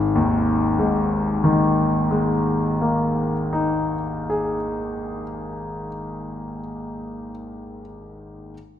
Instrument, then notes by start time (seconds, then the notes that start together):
grand piano
Already playing: G#1
0.15 D#2
0.79 G#2
1.44 D#3
2.11 G#3
2.81 A#3
3.53 D#4
4.30 G#4